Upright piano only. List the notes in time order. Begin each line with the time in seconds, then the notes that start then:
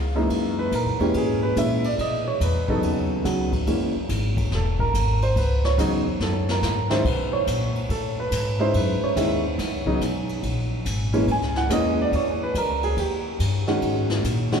Already playing: G#4 F5
0.15 F#2 E3 G#3 A#3 D#4
0.59 B4
0.75 A#4
1.00 E3 G#3 A#3 C#4 G4
1.17 G#4
1.43 B4
1.56 E3 G#3 A#3 C#4 E5
1.85 D5
2.01 D#5
2.28 C#5
2.43 B4
2.69 C#3 F#3 B3 D#4 A4
3.24 C#3 F#3 B3 F#4
3.67 E3 G#3 A#3 C#4
4.55 A4
4.80 A#4
5.23 C5
5.38 B4
5.65 C#5
5.78 C#3 F#3 B3 D#4
6.22 A4
6.51 A#4
6.90 D#3 G#3 C#4 E4 C5
7.06 B4
7.33 C#5
7.91 A4
8.20 B4
8.59 G#3 C#4 D#4 E4 C5
8.77 B4
9.04 C#5
9.16 D#3 G#3 C#4 E4
9.86 C#3 F#3 B3 D#4
11.13 E3 G#3 A#3 C#4
11.31 G#5
11.57 F#5
11.69 E3 G#3 A#3 C#4 D#5
12.02 D5
12.16 C#5
12.43 B4
12.58 A#4
12.84 G#4
12.99 G4
13.67 D#3 G#3 C#4 F#4
14.52 D#3 G#3 C#4 F#4